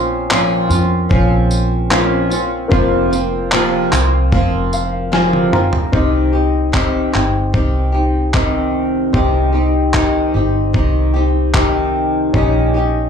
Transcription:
Already playing: fingered electric bass A#1, upright piano A#3 C#4 F4 C5, nylon-string guitar C4 C#4 F4
0.30 nylon-string guitar A#2 F3 C4 C#4 F4, clap
0.69 fingered electric bass F2, nylon-string guitar C4 C#4 F4, tambourine
1.09 fingered electric bass A#1, nylon-string guitar F3 C4 C#4 F4, kick
1.51 tambourine
1.90 nylon-string guitar A#2 F3 C4 C#4 F4, upright piano A#3 C4 F4 C5, clap
1.96 upright piano C#4
2.30 nylon-string guitar C4 C#4 F4, tambourine
2.68 fingered electric bass F1, nylon-string guitar F2 C3 F3 A#3 C4, upright piano A#3 C4 F4, kick
2.72 nylon-string guitar F4, upright piano C5
3.11 nylon-string guitar F3 A#3 C4 F4, tambourine
3.51 nylon-string guitar F2 C3 F3 A#3 C4 F4, clap
3.91 fingered electric bass C2, nylon-string guitar F3 A#3 C4 F4, clap, tambourine
4.32 fingered electric bass F1, nylon-string guitar F3 A#3 C4 F4, kick
4.73 upright piano F5, tambourine
5.12 nylon-string guitar F2 C3 F3 A#3 C4 F4, upright piano G#5, snare
5.33 high tom
5.53 nylon-string guitar F3 A#3 C4 F4, upright piano A#5, mid tom
5.73 floor tom
5.92 fingered electric bass C2, nylon-string guitar C3 D#3 C4 D#4 G4, upright piano C4 G4 D#5, kick
6.33 nylon-string guitar C4 D#4 G4
6.72 nylon-string guitar C3 D#3 C4 D#4 G4, kick, clap
7.12 fingered electric bass G1, nylon-string guitar C4 D#4 G4, clap
7.53 fingered electric bass C2, nylon-string guitar D#3 C4 D#4 G4, kick
7.92 nylon-string guitar C4 D#4 G4
8.33 nylon-string guitar C3 D#3 C4 D#4 G4, kick, clap
9.13 fingered electric bass C2, nylon-string guitar C3 D#3 C4 D#4 G4, upright piano C4 G4, kick
9.17 upright piano D#5
9.52 nylon-string guitar C4 D#4 G4
9.94 nylon-string guitar C3 D#3 C4 D#4 G4, kick, clap
10.34 fingered electric bass G1, nylon-string guitar C4 D#4 G4
10.73 fingered electric bass C2, nylon-string guitar D#3 C4 D#4 G4, kick
11.14 nylon-string guitar C4 D#4 G4
11.54 nylon-string guitar C3 D#3 C4 D#4 G4, kick, clap
12.33 fingered electric bass A#1, nylon-string guitar A#2 D#3 C#4 D#4 G4, upright piano C#4 G4 D#5, kick
12.74 nylon-string guitar C#4 D#4 G4

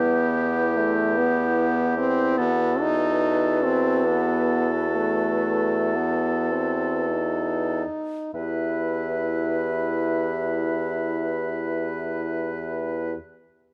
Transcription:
Already playing: bassoon E2, french horn B3, clarinet E4, oboe G4, flute B4
0.77 french horn A3
1.17 french horn B3
1.97 french horn C4
2.37 bassoon E2, french horn B3, clarinet F#4, oboe A4, flute B4
2.80 french horn D#4
3.63 french horn C4
4.05 french horn B3
4.88 french horn B3
4.96 french horn A3
5.96 french horn B3
6.51 french horn C4
7.10 french horn D#4
8.34 bassoon E2, french horn E4, clarinet G4, oboe B4, flute B4

